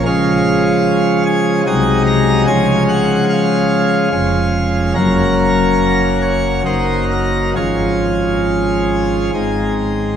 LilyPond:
<<
  \new Staff \with { instrumentName = "Pipe organ" } { \time 3/4 \key des \major \tempo 4 = 72 f''4. aes''8 aes''8 bes''8 | aes''8 ges''8 f''2 | bes'4. des''8 c''8 bes'8 | aes'2~ aes'8 r8 | }
  \new Staff \with { instrumentName = "Pipe organ" } { \clef bass \time 3/4 \key des \major <des f aes des'>2 <c, c ges aes ees'>4 | <des f aes des'>2 <f,, f, aes des'>4 | <ges,, ges, ges bes des'>2 <ges,, ges, ges bes ees'>4 | <aes,, aes, f des' f'>2 <aes,, aes, aes c' ees'>4 | }
>>